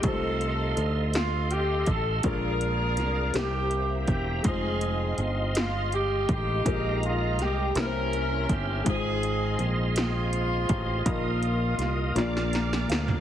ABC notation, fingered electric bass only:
X:1
M:6/8
L:1/8
Q:3/8=54
K:Fdor
V:1 name="Fingered electric bass" clef=bass
C,,2 D,,3 =A,,, | B,,,2 C,, C,,2 =E,,, | F,,,2 G,,,3 =A,,, | B,,,2 C,, C,,2 G,,, |
A,,,2 B,,,3 =A,,, | B,,,2 C,, B,,,2 D,, |]